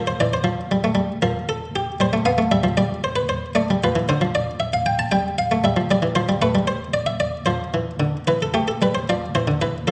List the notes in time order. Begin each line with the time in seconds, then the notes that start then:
0.07 C5
0.20 E3 D5
0.33 C5
0.44 F3
0.71 G3
0.84 A3
0.95 G3
1.22 F3 A#4
1.49 A4
1.76 G4
2.00 G3 C5
2.13 A3
2.25 B3 F5
2.38 A3
2.52 G3 E5
2.64 F3
2.77 G3 D5
3.04 C5
3.16 B4
3.29 C5
3.55 A3 D5
3.70 G3
3.84 F3 B4
3.96 E3
4.09 D3 C5
4.21 F3
4.35 D5
4.60 E5
4.73 F5
4.86 G5
4.99 A5
5.12 G3 G5
5.38 F5
5.51 A3
5.64 G3 E5
5.77 F3
5.91 G3 D5
6.02 E3
6.15 F3 C5
6.29 G3
6.42 A3 B4
6.55 G3
6.67 C5
6.94 D5
7.06 E5
7.20 D5
7.46 F3 C5
7.74 E3
8.00 D3
8.27 E3 B4
8.42 A4
8.54 A3 G4
8.68 A4
8.82 G3 B4
8.95 C5
9.09 F3 D5
9.35 E3 C5
9.47 D3
9.62 E3 B4
9.87 F3 A4